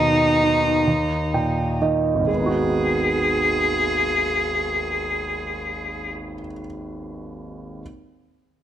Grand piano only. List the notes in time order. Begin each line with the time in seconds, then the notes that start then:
Already playing: D#2
0.00 B2
0.43 D#3
0.87 D#2
1.34 A#2 G5
1.82 D#3 D#5
2.15 G#1
2.21 D#2
2.27 G#3
2.33 B3
2.40 D#4
2.46 F#4